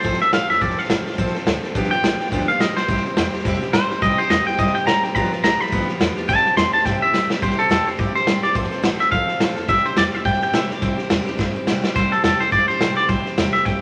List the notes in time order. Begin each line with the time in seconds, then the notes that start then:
Already playing: C5
0.03 C2 F3 C4 F4 A4, kick, snare
0.13 snare
0.20 C4 F4 A4 E5, snare
0.33 A1 F3 C4 F4 A4 F5, snare, hi-hat pedal
0.48 F1 C4 F4 A4 E5, snare
0.61 F1 F3 C4 F4 A4 D5, kick, snare
0.70 snare
0.77 C4 F4 A4 F5, snare
0.84 snare
0.89 A1 F3 C4 F4 A4, snare, hi-hat pedal
1.06 C4 F4 A4, muted upright bass stroke, snare
1.13 snare
1.18 A1 F3 C4 F4 A4, kick, snare
1.27 snare
1.35 C4 F4 A4, snare
1.46 D2 F3 C4 F4 A4, snare, hi-hat pedal
1.63 C4 F4 A4, snare
1.75 G1 G2 D3 F3 B3 F4 G4, kick, snare
1.84 snare
1.91 F3 B3 F4 G4 G5, muted upright bass stroke, snare
2.03 B1 F3 B3 F4 G4, snare, hi-hat pedal
2.19 F3 B3 F4 G4, snare
2.26 snare
2.32 D2 G2 D3 F3 B3 F4 G4, kick, snare
2.41 snare
2.48 F3 B3 F4 G4 F5, snare
2.60 B1 F3 B3 F4 G4 D#5, snare, hi-hat pedal
2.77 B1 F3 B3 F4 G4 C5, snare
2.88 C2 C3 G3 C4 E4 G4, kick, snare
2.97 snare
3.05 C4 E4 G4, muted upright bass stroke, snare
3.17 E2 G3 C4 E4 G4, snare, hi-hat pedal
3.33 C4 E4 G4, snare
3.39 snare
3.45 F2 C3 G3 C4 E4 G4, kick, snare
3.53 snare
3.62 C4 E4 G4, snare
3.73 A2 G3 C4 E4 G4 C5, snare, hi-hat pedal
3.90 C4 E4 G4, muted upright bass stroke, snare
4.02 C2 C3 G3 C4 E4 G4 D#5, kick, snare
4.10 snare
4.18 C4 E4 G4 C5, snare
4.30 E2 G3 C4 E4 G4 D#5, snare, hi-hat pedal
4.46 C4 E4 G4 G5, muted upright bass stroke, snare
4.53 snare
4.58 G2 C3 G3 C4 E4 G4 D#5, kick, snare
4.67 snare
4.75 C4 E4 G4 G5, muted upright bass stroke, snare
4.86 E2 G3 C4 E4 G4 A#5, snare, hi-hat pedal
5.03 C2 C4 E4 G4 G5, snare
5.15 G1 G2 D3 F3 B3 F4 G4 A#5, kick, snare
5.24 snare
5.31 F3 B3 F4 G4, muted upright bass stroke, snare
5.43 B1 F3 B3 F4 G4 A#5, snare, hi-hat pedal
5.60 F3 B3 F4 G4 B5, snare
5.67 snare
5.72 C2 G2 D3 F3 B3 F4 G4, kick, snare
5.81 snare
5.88 F3 B3 F4 G4, muted upright bass stroke, snare
6.00 E2 F3 B3 F4 G4, snare, hi-hat pedal
6.16 F3 B3 F4 G4, snare
6.28 C2 C3 G3 C4 E4 G4 A5, kick, snare
6.37 snare
6.45 C4 E4 G4, snare
6.57 E2 G3 C4 E4 G4 C6, snare, hi-hat pedal
6.73 C4 E4 G4 A5, snare
6.80 snare
6.85 G2 C3 G3 C4 E4 G4 G5, kick, snare
7.01 C4 E4 G4 E5, muted upright bass stroke
7.14 E2 G3 C4 E4 G4, snare, hi-hat pedal
7.30 C2 C4 E4 G4, snare
7.42 C2 C3 G3 C4 E4 G4 C5, kick, snare
7.51 snare
7.58 C4 E4 G4 A4, snare
7.69 E2 C3 G3 C4 E4 G4 A4, snare, hi-hat pedal
7.86 C4 E4 G4 C5, snare
7.98 G2 G3 C4 E4 G4 D5, kick, snare
8.15 C4 E4 G4 C5, snare
8.27 A2 C3 G3 C4 E4 G4, snare, hi-hat pedal
8.43 G2 C4 E4 G4 D5, snare
8.54 F1 F3 C4 F4 A4 C5, kick, snare
8.64 snare
8.71 C4 F4 A4, snare
8.83 A1 F3 C4 F4 A4, snare, hi-hat pedal
8.99 C4 F4 A4 E5, muted upright bass stroke, snare
9.11 C2 F3 C4 F4 A4 F5, kick, snare
9.28 C4 F4 A4, muted upright bass stroke, snare
9.40 D2 F3 C4 F4 A4, snare, hi-hat pedal
9.56 F2 C4 F4 A4, snare
9.68 C2 C3 G3 C4 E4 G4 E5, kick, snare
9.77 snare
9.85 C4 E4 G4 C5, muted upright bass stroke, snare
9.97 E2 C3 G3 C4 E4 G4 D5, snare, hi-hat pedal
10.13 C4 E4 G4 E5, muted upright bass stroke, snare
10.25 G2 G3 C4 E4 G4 G5, kick, snare
10.33 snare
10.41 C4 E4 G4 G5, muted upright bass stroke, snare
10.53 A2 C3 G3 C4 E4 G4 E5, snare, hi-hat pedal
10.70 C3 C4 E4 G4 D5, snare
10.82 C2 C3 G3 C4 E4 G4 C5, kick, snare
10.98 C4 E4 G4, muted upright bass stroke, snare
11.10 E2 C3 G3 C4 E4 G4, snare, hi-hat pedal
11.26 C4 E4 G4, snare
11.38 G2 G3 C4 E4 G4, kick, snare
11.54 C4 E4 G4, muted upright bass stroke
11.67 A2 C3 G3 C4 E4 G4, snare, hi-hat pedal
11.84 C4 E4 G4, snare
11.96 C2 C3 G3 C4 E4 G4 C5, kick, snare
12.12 C4 E4 G4 A4, snare
12.24 E2 C3 G3 C4 E4 G4 A4, snare, hi-hat pedal
12.39 C4 E4 G4 C5, muted upright bass stroke, snare
12.51 G2 G3 C4 E4 G4 D5, kick, snare
12.68 C4 E4 G4 C5, muted upright bass stroke, snare
12.80 A2 C3 G3 C4 E4 G4, snare, hi-hat pedal
12.97 C3 C4 E4 G4 D5, snare
13.09 C2 C3 G3 C4 E4 G4 C5, kick, snare
13.25 C4 E4 G4, snare
13.37 E2 C3 G3 C4 E4 G4, snare, hi-hat pedal
13.53 C4 E4 G4 E5, muted upright bass stroke, snare
13.65 G2 G3 C4 E4 G4 G5, kick, snare